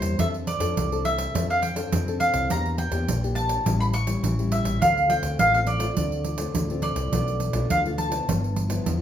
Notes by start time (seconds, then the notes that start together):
Already playing: G2 G3 A#3 E4 C5
0.02 E2, pandeiro
0.19 F2 F3 C4 D4 A4 E5, pandeiro
0.34 pandeiro
0.47 D5, pandeiro
0.60 F2 C4 D4 A4, pandeiro
0.77 C2 C3, pandeiro
0.92 C4 D4 A4, pandeiro
1.05 E5, pandeiro
1.18 pandeiro
1.35 F2 F3 C4 D4 A4, pandeiro
1.50 F5, pandeiro
1.62 G5, pandeiro
1.76 C4 D4 A4, pandeiro
1.92 F2 C3, pandeiro
2.08 C4 D4 A4, pandeiro
2.20 F5, pandeiro
2.34 C2, pandeiro
2.50 E2 E3 A#3 D4 G4 A#5, pandeiro
2.66 pandeiro
2.78 G5, pandeiro
2.91 E2 A#3 D4 G4, pandeiro
3.08 A#1 E3, pandeiro
3.24 A#3 D4 G4, pandeiro
3.35 A5, pandeiro
3.49 pandeiro
3.66 A1 A2 G3 C#4 E4, pandeiro
3.80 B5, pandeiro
3.93 C#6, pandeiro
4.07 G3 C#4 E4, pandeiro
4.23 A1 E3, pandeiro
4.39 G3 C#4 E4, pandeiro
4.52 E5, pandeiro
4.64 A1, pandeiro
4.82 D2 D3 A3 C4 F4 F5, pandeiro
4.97 pandeiro
5.10 A3 C4 F4 G5, pandeiro
5.23 D2, pandeiro
5.39 A1 A2 F5, pandeiro
5.54 A3 C4 F4 F5, pandeiro
5.67 D5, pandeiro
5.80 A3 C4 F4, pandeiro
5.97 D2 D3 A3 C4 F4, pandeiro
6.12 pandeiro
6.24 pandeiro
6.38 A3 C4 F4, pandeiro
6.55 D2 A2, pandeiro
6.70 A3 C4 F4, pandeiro
6.82 D5, pandeiro
6.96 C2, pandeiro
7.12 B1 B2 A3 D4 F4, pandeiro
7.28 pandeiro
7.40 pandeiro
7.53 B1 A3 D4 F4, pandeiro
7.70 D2 B2 F5, pandeiro
7.86 A3 D4 F4, pandeiro
7.98 A5, pandeiro
8.12 F3 B3 E4, pandeiro
8.28 G1 G2, pandeiro
8.44 pandeiro
8.56 pandeiro
8.69 F3 B3 E4, pandeiro
8.86 E2 D3, pandeiro